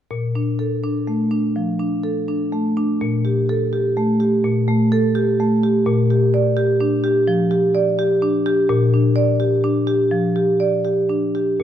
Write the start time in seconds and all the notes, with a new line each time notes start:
0.11 A#2
0.35 D4
0.59 A4
0.83 D4
1.07 A3
1.31 D4
1.56 F3
1.80 D4
2.04 A4
2.28 D4
2.52 A3
2.77 D4
3.01 A#2
3.25 G4
3.49 A4
3.73 G4
3.97 A3
4.20 G4
4.44 A#2
4.68 A3
4.92 A4
5.15 G4
5.40 A3
5.63 G4
5.86 A#2
6.10 G4
6.34 D5
6.57 G4
6.80 D4
7.04 G4
7.28 F3
7.51 G4
7.75 D5
7.99 G4
8.22 D4
8.46 G4
8.69 A#2
8.94 D4
9.16 D5
9.40 G4
9.64 D4
9.87 G4
10.11 F3
10.36 G4
10.60 D5
10.85 G4
11.09 D4
11.35 G4
11.60 A#2